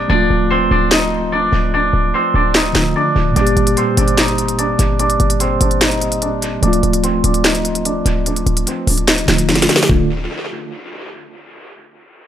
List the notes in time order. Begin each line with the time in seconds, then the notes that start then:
Already playing: C4 C5
0.08 D1 F3 A3 D4 D5
0.15 F4
0.30 D1
0.50 C4 C5
0.71 D1 D4 D5
0.91 D#4 D#5, snare, clap
1.32 D4 D5
1.53 D1
1.74 D4 D5
1.93 D1
2.14 C4 C5
2.34 D1 D4 D5
2.55 D#4 D#5, snare, clap
2.73 D1 D3 F3 A3, snare, clap
2.77 F4
2.96 D4 D5
3.16 D1
3.31 A#2 G3
3.36 G1 A#3 D4 D5, closed hi-hat
3.41 G4
3.47 closed hi-hat
3.57 G1, closed hi-hat
3.67 closed hi-hat
3.77 C4 C5, closed hi-hat
3.97 G1 D4 D5, closed hi-hat
4.08 closed hi-hat
4.18 D#4 D#5, snare, clap, closed hi-hat
4.28 closed hi-hat
4.38 closed hi-hat
4.48 closed hi-hat
4.59 D4 D5, closed hi-hat
4.79 G1, closed hi-hat
4.99 D4 D5, closed hi-hat
5.10 closed hi-hat
5.20 G1, closed hi-hat
5.30 closed hi-hat
5.40 C4 C5, closed hi-hat
5.61 G1 D4 D5, closed hi-hat
5.71 closed hi-hat
5.81 D#4 D#5, snare, clap, closed hi-hat
5.91 closed hi-hat
6.01 closed hi-hat
6.12 closed hi-hat
6.22 D4 D5, closed hi-hat
6.42 closed hi-hat
6.61 D1 F3 A3 D4 D5, closed hi-hat
6.68 F4
6.73 closed hi-hat
6.83 D1, closed hi-hat
6.93 closed hi-hat
7.03 C4 C5, closed hi-hat
7.24 D1 D4 D5, closed hi-hat
7.34 closed hi-hat
7.44 D#4 D#5, snare, clap, closed hi-hat
7.55 closed hi-hat
7.65 closed hi-hat
7.75 closed hi-hat
7.85 D4 D5, closed hi-hat
8.06 D1, closed hi-hat
8.26 D4 D5, closed hi-hat
8.36 closed hi-hat
8.46 D1, closed hi-hat
8.57 closed hi-hat
8.67 C4 C5, closed hi-hat
8.87 D1 D4 D5, open hi-hat
8.98 closed hi-hat
9.08 D#4 D#5, snare, clap, closed hi-hat
9.18 closed hi-hat
9.26 D1 D3 F3 A3, snare, clap, closed hi-hat
9.31 F4
9.38 closed hi-hat
9.48 F1 D4 D5, snare, closed hi-hat
9.55 snare, closed hi-hat
9.62 snare, closed hi-hat
9.69 snare, closed hi-hat
9.76 snare
9.83 snare
9.89 D1 D3 A3 D4 F4, kick